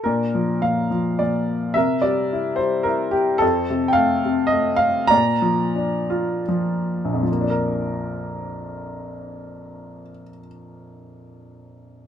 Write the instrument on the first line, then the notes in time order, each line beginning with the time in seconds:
upright piano
0.04 A#2 D4 A#4
0.35 F3
0.62 A#2 F5
0.91 F3
1.19 A#2 D5
1.74 C3 A#4 E5
2.02 G3 D5
2.33 E4
2.56 G3 C5
2.83 E4 A#4
3.11 G4
3.38 F2 C4 A4
3.70 C3
3.88 G5
3.93 A3 F5
4.25 C3
4.47 D#5
4.52 A3
4.76 F5
5.07 A#2 D5 A#5
5.42 F3
5.76 D4
6.10 F4
6.48 F3
7.05 A#1
7.14 F2
7.23 F3
7.32 A#3
7.41 D4
7.50 A#4